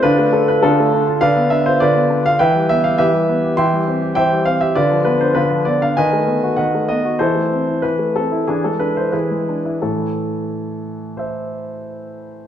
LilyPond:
<<
  \new Staff \with { instrumentName = "Grand piano" } { \time 4/4 \key a \minor \tempo 4 = 99 << { <d' f' b'>8 a'16 b'16 <d' f' a'>4 <b' d'' f''>8 e''16 c''16 <f' b' d''>8. f''16 | <b' e'' g''>8 e''16 f''16 <g' b' e''>4 <e'' g'' c'''>4 <c'' e'' g''>8 f''16 e''16 | <f' b' d''>8 b'16 c''16 <d' f' b'>8 d''16 f''16 <b' dis'' gis''>4 <b' dis'' fis''>8 dis''8 | <e' a' c''>4 b'8 a'8 <d' e' gis'>16 a'16 b'16 c''16 <e' gis' b'>4 |
a'1 | } \\ { r1 | r1 | r1 | r1 |
r2 <c'' e''>2 | } >> }
  \new Staff \with { instrumentName = "Grand piano" } { \time 4/4 \key a \minor d16 a16 d'16 f'16 d16 a16 d'16 f'16 d16 b16 d'16 f'16 d16 b16 d'16 f'16 | e16 g16 b16 g'16 e16 g16 b16 g'16 e16 g16 c'16 g'16 e16 g16 c'16 g'16 | d16 f16 b16 d'16 d16 f16 b16 d'16 dis16 a16 b16 fis'16 dis16 a16 b16 fis'16 | e16 a16 c'16 e'16 e16 a16 c'16 e'16 e16 gis16 d'16 e'16 e16 gis16 d'16 e'16 |
<a, e>1 | }
>>